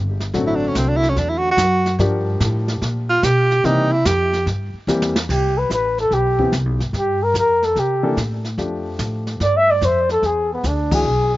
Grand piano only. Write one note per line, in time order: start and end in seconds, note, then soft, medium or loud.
0.34 1.49 D3 medium
0.34 1.50 F#3 medium
0.34 1.50 A3 medium
0.34 1.50 C4 medium
0.34 1.50 F#4 medium
1.99 3.15 F3 medium
1.99 3.15 G3 medium
1.99 3.15 D4 medium
1.99 3.15 G4 medium
1.99 3.15 A#4 medium
3.65 3.89 E3 medium
3.65 3.89 G3 medium
3.65 3.89 A#3 medium
3.65 3.90 C4 medium
3.65 3.89 G4 medium
4.88 5.13 E3 medium
4.88 5.13 G3 medium
4.88 5.13 A#3 medium
4.88 5.13 C4 medium
4.88 5.13 G4 medium
6.39 6.51 E3 medium
6.39 6.51 B3 medium
6.39 6.51 C4 medium
6.39 6.51 G4 medium
8.03 8.15 E3 medium
8.03 8.15 A#3 medium
8.03 8.15 D4 medium
8.03 8.16 A4 medium
8.58 9.73 F3 medium
8.58 9.74 A3 soft
8.58 9.74 D4 medium
8.58 9.74 G4 medium
10.92 11.04 E3 medium
10.92 11.04 G#3 medium
10.92 11.04 D4 medium
10.92 11.04 F#4 medium